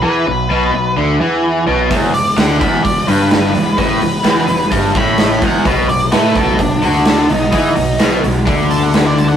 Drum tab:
HH |--------|oooooooo|oooooooo|oooooooo|
SD |--------|--o---o-|--o---o-|--o---o-|
BD |--------|o--oo---|o---oo-o|o--oo---|

HH |oooooooo|
SD |--o---o-|
BD |o---o---|